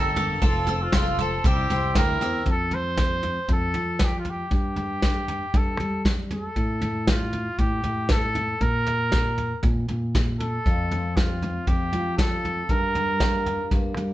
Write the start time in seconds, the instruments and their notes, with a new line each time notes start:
Already playing: fingered electric bass G1, twelve-string acoustic guitar G3 A#3 D4 A#4, trumpet A4, mandolin G5 D6 E6
0.16 twelve-string acoustic guitar G3 A#3 D4 A#4, mandolin D6, floor tom
0.42 fingered electric bass F1, twelve-string acoustic guitar F3 C4 F4 A4, trumpet A4, mandolin A5, kick, floor tom
0.67 twelve-string acoustic guitar C4 F4 A4, mandolin E6, floor tom
0.83 trumpet F4
0.92 fingered electric bass F1, twelve-string acoustic guitar F3 C4 F4 A4, mandolin C6, kick, snare, floor tom
1.19 twelve-string acoustic guitar C4 F4 A4, trumpet A4, mandolin A5, floor tom
1.44 fingered electric bass C2, twelve-string acoustic guitar C3 G3 C4 E4 G4, trumpet G4, mandolin E6, kick, floor tom
1.70 fingered electric bass C2, twelve-string acoustic guitar C4 E4 G4, mandolin C6, floor tom
1.95 fingered electric bass D2, twelve-string acoustic guitar G3 C4 E4 G4, trumpet A#4, mandolin G5, kick, snare, floor tom
2.21 fingered electric bass E2, twelve-string acoustic guitar C4 E4 G4, mandolin E6, floor tom
2.46 fingered electric bass F2, kick, floor tom
2.50 trumpet A4
2.71 trumpet C5, floor tom
2.97 kick, snare, floor tom
3.23 floor tom
3.48 fingered electric bass F2, trumpet A4, kick, floor tom
3.74 fingered electric bass F3, floor tom
3.99 kick, snare, floor tom
4.05 trumpet G4
4.19 trumpet F4
4.25 floor tom
4.30 trumpet G4
4.51 fingered electric bass G2, kick, floor tom
4.55 trumpet G4
4.76 floor tom
5.02 kick, snare, floor tom
5.28 floor tom
5.54 fingered electric bass G2, trumpet A4, kick, floor tom
5.80 fingered electric bass G3, floor tom
6.05 kick, snare, floor tom
6.31 trumpet A4, floor tom
6.56 fingered electric bass A2, kick, floor tom
6.82 floor tom
7.07 trumpet F4, kick, snare, floor tom
7.33 floor tom
7.58 fingered electric bass A2, trumpet G4, kick, floor tom
7.84 fingered electric bass A2, floor tom
8.09 trumpet A4, kick, snare, floor tom
8.35 floor tom
8.61 fingered electric bass A#2, trumpet A#4, kick, floor tom
8.87 floor tom
9.12 kick, snare, floor tom
9.38 floor tom
9.63 fingered electric bass A#2, kick, floor tom
9.88 fingered electric bass A#2, floor tom
10.15 kick, snare, floor tom
10.40 trumpet A4, floor tom
10.66 fingered electric bass F2, steel-string acoustic guitar F2 F4, kick, floor tom
10.91 steel-string acoustic guitar F3, floor tom
11.17 steel-string acoustic guitar C4, trumpet F4, kick, snare, floor tom
11.42 steel-string acoustic guitar C4, floor tom
11.67 fingered electric bass F2, steel-string acoustic guitar C4, trumpet G4, kick, floor tom
11.93 fingered electric bass F3, steel-string acoustic guitar F4, floor tom
12.17 trumpet A4, kick, snare, floor tom
12.45 steel-string acoustic guitar C4, floor tom
12.69 fingered electric bass G2, steel-string acoustic guitar G2 D4, trumpet A#4, kick, floor tom
12.95 steel-string acoustic guitar G3, floor tom
13.20 steel-string acoustic guitar A#3, kick, snare, floor tom
13.46 steel-string acoustic guitar D4, floor tom
13.71 fingered electric bass G2, steel-string acoustic guitar A#3, kick, floor tom
13.97 fingered electric bass G3, steel-string acoustic guitar A#4, floor tom